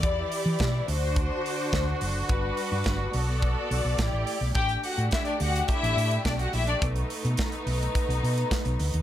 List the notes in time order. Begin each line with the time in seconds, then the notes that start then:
Already playing: D5
0.02 E2 E3 E4 G4, kick, closed hi-hat
0.32 open hi-hat
0.46 E3
0.59 B2, kick, snare, closed hi-hat
0.88 D2 D3 D4 F#4 C5, open hi-hat
1.16 kick, closed hi-hat
1.46 open hi-hat
1.73 D2, kick, snare, closed hi-hat
2.01 F#1, open hi-hat
2.28 G1 G3 D4 B4, kick, closed hi-hat
2.57 open hi-hat
2.72 G2
2.84 G1, kick, snare, closed hi-hat
3.13 B1 B3 A4 D5, open hi-hat
3.42 kick, closed hi-hat
3.71 B1, open hi-hat
3.85 B1
3.98 A1 A3 E4 G4, kick, snare, closed hi-hat
4.13 A1
4.27 open hi-hat
4.41 B1
4.55 A1 A3 D4 G4 G5, kick, closed hi-hat
4.69 closed hi-hat
4.83 F#4 F#5, open hi-hat
4.98 A2, closed hi-hat
5.11 E4 E5, kick, snare, closed hi-hat
5.25 D4 D5, closed hi-hat
5.40 D2 F#4 F#5, open hi-hat
5.56 closed hi-hat
5.68 E4 E5, kick, closed hi-hat
5.83 A1, closed hi-hat
5.97 A2, open hi-hat
6.11 closed hi-hat
6.25 B1 D4 D5, kick, snare, closed hi-hat
6.39 F#4 F#5, closed hi-hat
6.53 A#1 E4 E5, open hi-hat
6.67 D4 D5, closed hi-hat
6.81 B1 B3 D#4, kick, closed hi-hat
6.96 closed hi-hat
7.10 open hi-hat
7.25 B2, closed hi-hat
7.37 kick, snare, closed hi-hat
7.52 closed hi-hat
7.66 B1, open hi-hat
7.83 closed hi-hat
7.95 kick, closed hi-hat
8.09 B1, closed hi-hat
8.23 B2, open hi-hat
8.38 closed hi-hat
8.51 kick, snare, closed hi-hat
8.65 B1, closed hi-hat
8.80 D2, open hi-hat
8.94 D#2, closed hi-hat